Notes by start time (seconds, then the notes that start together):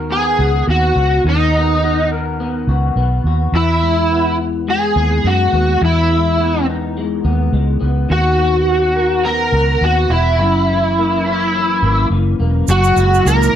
Already playing: D#2 D#3 F#4 A#4
0.10 B3 G#4
0.39 C#2 F#4
0.67 D#2 B3 F#4
0.96 C#2 F#4
1.24 D#2 D#3
1.29 D#4
1.54 B3
1.83 F#4
2.12 A#4
2.40 B3
2.67 C#2 F#4
2.96 B1 B3
3.24 D#2 F#4
3.52 E2 E3 E4
3.83 G#3
4.12 B3
4.68 G#3 G#4
4.96 D#2 B3
5.24 F#2 G#3 F#4
5.53 D#2 B3
5.82 E2 E3 E4
6.11 G#3
6.40 B3
6.70 D#4
6.97 G#3
7.25 D#2 B3
7.53 C#2 G#3
7.80 C#2 B3
8.09 D#2 D#3 F#4
8.39 B3
8.68 F#4
8.96 A#4
9.25 B3 A#4
9.52 C#2 F#4
9.81 D#2 B3 F#4
10.10 E1 E4 F#4
10.39 F#1 F#2
10.69 E3
10.98 A#3
11.26 C#4
11.54 E3
11.82 G#1 A#3
12.10 F#1 E3
12.40 E1 A#3
12.68 F#1 A#2 F#3 G#3 E4 F#4, shaker
12.84 shaker
12.96 F#1 E4, shaker
13.14 shaker
13.25 C#2 A#3 A#4, shaker
13.42 shaker